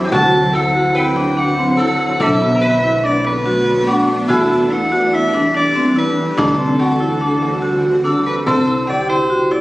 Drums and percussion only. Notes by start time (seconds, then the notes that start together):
0.12 frame drum
1.16 frame drum
1.79 frame drum
2.20 frame drum
3.25 frame drum
3.87 frame drum
4.30 frame drum
4.50 frame drum
4.71 frame drum
5.34 frame drum
5.96 frame drum
6.38 frame drum
7.43 frame drum
7.85 frame drum
8.26 frame drum
8.47 frame drum
9.52 frame drum